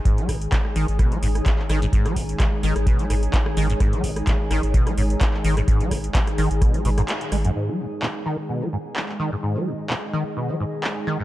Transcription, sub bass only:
0.29 0.47 G#1 loud
0.76 0.85 G#1 loud
0.88 1.06 G#1 loud
1.23 1.41 G#1 medium
1.69 1.88 G#1 loud
2.16 2.35 G#1 loud
2.63 2.73 G#1 loud
2.76 2.93 G#1 loud
3.10 3.28 G#1 loud
3.57 3.75 G#1 loud
4.04 4.22 G#1 loud
4.51 4.60 G#1 loud
4.63 4.81 G#1 loud
4.97 5.16 G#1 loud
5.44 5.63 G#1 loud
5.91 6.10 G#1 loud
6.38 6.48 G#1 loud
6.51 6.68 G#1 loud
6.85 7.03 G#1 loud
7.32 7.50 G#1 medium

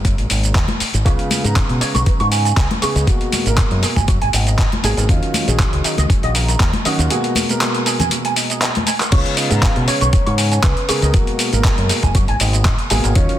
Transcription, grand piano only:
0.00 0.77 B2 medium
0.00 0.77 G#3 medium
0.00 0.78 A#3 medium
0.00 0.78 A#4 medium
1.05 1.41 C#3 medium
1.05 1.41 G#3 medium
1.05 1.41 B3 medium
1.05 1.41 F4 medium
1.44 2.79 C#3 medium
1.44 2.79 G#3 medium
1.44 2.80 B3 medium
1.44 2.80 A#5 medium
2.82 3.04 C#3 medium
2.82 3.04 G#3 medium
2.82 3.05 B3 medium
2.82 3.05 G#4 loud
3.07 3.43 B2 medium
3.07 3.43 G#3 medium
3.07 3.43 A#3 medium
3.07 3.43 F#4 loud
3.46 4.81 B2 medium
3.46 4.81 G#3 medium
3.46 4.81 A#3 medium
3.46 4.82 A#4 medium
4.83 5.06 B2 medium
4.83 5.06 G#3 medium
4.83 5.06 A#3 medium
4.83 5.06 G#4 loud
5.09 5.44 D#3 medium
5.09 5.45 F#3 medium
5.09 5.45 C#4 medium
5.09 5.45 F4 loud
5.46 6.82 D#3 medium
5.46 6.82 F#3 medium
5.46 6.83 C#4 medium
5.46 6.83 G#4 medium
6.85 7.08 D#3 medium
6.85 7.08 F#3 medium
6.85 7.08 C#4 medium
6.85 7.08 F#4 loud
7.10 7.46 B2 medium
7.10 7.46 G#3 medium
7.10 7.46 A#3 medium
7.10 7.46 F#4 loud
7.48 8.84 B2 medium
7.48 8.84 G#3 medium
7.48 8.84 A#3 medium
7.48 8.85 A#4 medium
9.12 9.48 C#3 medium
9.12 9.48 G#3 medium
9.12 9.48 B3 medium
9.12 9.48 F4 loud
9.50 10.85 C#3 medium
9.50 10.86 G#3 medium
9.50 10.86 B3 medium
9.50 10.86 A#5 medium
10.88 11.11 C#3 loud
10.88 11.11 G#3 medium
10.88 11.11 B3 medium
10.88 11.11 G#4 loud
11.14 11.49 B2 medium
11.14 11.49 G#3 medium
11.14 11.50 A#3 medium
11.14 11.50 F#4 loud
11.52 12.87 B2 medium
11.52 12.88 G#3 medium
11.52 12.88 A#3 medium
11.52 12.88 A#4 medium
12.90 13.13 B2 loud
12.90 13.13 G#3 medium
12.90 13.13 A#3 medium
12.90 13.13 G#4 loud
13.15 13.39 D#3 medium
13.15 13.39 F#3 medium
13.15 13.39 C#4 medium
13.15 13.39 F4 loud

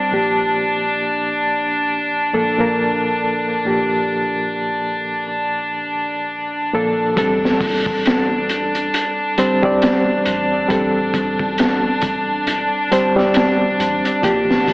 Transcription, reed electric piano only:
0.00 0.13 G3 medium
0.00 0.13 C4 medium
0.00 0.12 C5 medium
0.00 0.12 D5 medium
0.11 2.27 A#2 medium
0.11 2.28 F3 medium
0.11 2.28 A#3 medium
0.11 2.28 G4 medium
2.33 2.52 A#2 medium
2.33 2.52 F3 medium
2.33 2.52 A#3 medium
2.33 2.52 A4 medium
2.58 3.60 A#2 medium
2.58 3.60 F3 medium
2.58 3.61 A#3 medium
2.58 3.61 A#4 medium
3.65 5.80 A#2 medium
3.65 5.81 F3 medium
3.65 5.81 A#3 medium
3.65 5.81 G4 medium
6.73 7.13 A#2 medium
6.73 7.13 F3 medium
6.73 7.13 A#3 medium
6.73 7.13 A4 medium
7.16 9.33 G3 medium
7.16 9.33 C4 medium
7.16 9.34 A4 medium
9.38 9.57 G3 medium
9.38 9.57 C4 medium
9.38 9.58 C5 medium
9.63 10.65 G3 medium
9.63 10.66 C4 medium
9.63 10.66 D5 medium
10.68 12.85 G3 medium
10.68 12.86 C4 medium
10.68 12.87 A4 medium
12.91 13.10 G3 medium
12.91 13.11 C4 medium
12.91 13.11 C5 medium
13.16 14.18 G3 medium
13.16 14.19 C4 medium
13.16 14.20 D5 medium
14.22 14.73 F3 medium
14.22 14.73 A#3 medium
14.22 14.73 G4 medium

